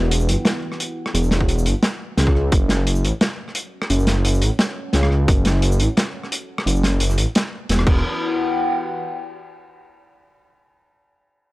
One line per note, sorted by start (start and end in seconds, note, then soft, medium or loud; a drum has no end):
0.00 0.29 E1 loud
0.00 3.54 E4 loud
0.00 3.34 B4 medium
0.00 2.52 F#5 medium
0.00 2.52 G5 medium
0.11 closed hi-hat loud
0.20 shaker medium
0.28 0.36 G1 medium
0.28 closed hi-hat medium
0.45 cross-stick medium
0.45 snare loud
0.45 closed hi-hat medium
0.72 cross-stick soft
0.80 closed hi-hat medium
1.06 cross-stick medium
1.14 1.68 E1 loud
1.14 closed hi-hat medium
1.23 shaker medium
1.31 snare medium
1.31 closed hi-hat medium
1.41 kick medium
1.49 closed hi-hat medium
1.58 shaker medium
1.66 1.74 G1 medium
1.66 closed hi-hat medium
1.83 snare loud
1.83 closed hi-hat medium
2.17 2.34 C#2 loud
2.17 snare medium
2.17 closed hi-hat medium
2.27 kick medium
2.27 cross-stick medium
2.35 2.51 C#2 medium
2.35 cross-stick soft
2.52 3.05 F#1 loud
2.52 7.87 F#4 medium
2.52 kick loud
2.52 closed hi-hat medium
2.69 snare medium
2.69 closed hi-hat medium
2.87 7.87 C#5 medium
2.87 closed hi-hat medium
2.92 7.87 F#5 medium
2.92 shaker medium
3.04 3.12 A1 medium
3.04 closed hi-hat medium
3.18 7.87 A5 medium
3.18 cross-stick medium
3.18 snare loud
3.18 closed hi-hat medium
3.48 cross-stick soft
3.55 closed hi-hat medium
3.82 cross-stick medium
3.90 4.44 F#1 loud
3.90 closed hi-hat medium
3.99 shaker medium
4.07 snare medium
4.07 closed hi-hat medium
4.25 closed hi-hat medium
4.34 shaker medium
4.42 4.50 A1 medium
4.42 closed hi-hat medium
4.59 snare loud
4.59 closed hi-hat medium
4.93 5.10 C#2 loud
4.93 snare medium
4.93 closed hi-hat medium
5.03 cross-stick medium
5.11 5.27 C#2 medium
5.11 cross-stick soft
5.28 5.82 F#1 loud
5.28 kick loud
5.28 closed hi-hat medium
5.45 snare medium
5.45 closed hi-hat medium
5.62 closed hi-hat medium
5.72 shaker medium
5.80 5.88 A1 medium
5.80 closed hi-hat medium
5.97 cross-stick medium
5.97 snare loud
5.97 closed hi-hat medium
6.23 cross-stick soft
6.32 closed hi-hat medium
6.58 cross-stick medium
6.66 7.19 F#1 loud
6.66 closed hi-hat medium
6.75 shaker medium
6.83 snare medium
6.83 closed hi-hat medium
7.00 closed hi-hat medium
7.10 cross-stick soft
7.10 shaker medium
7.18 7.26 A1 medium
7.18 closed hi-hat medium
7.35 snare loud
7.35 closed hi-hat medium
7.69 7.86 E1 medium
7.69 snare medium
7.69 closed hi-hat medium
7.79 cross-stick medium
7.87 8.03 E1 loud
7.87 9.21 E4 medium
7.87 kick loud
7.87 crash medium
7.92 9.21 B4 medium
8.15 9.38 F#5 medium
8.20 9.38 G5 medium